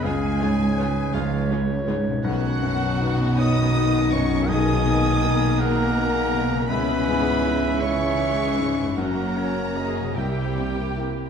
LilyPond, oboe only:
\new Staff \with { instrumentName = "Oboe" } { \time 6/8 \key cis \dorian \tempo 4. = 54 gis'4. eis'8 r4 | fis'4. dis''4 cis''8 | dis''4. ais'4. | b'4. cis''4 r8 |
ais'4. g'4. | }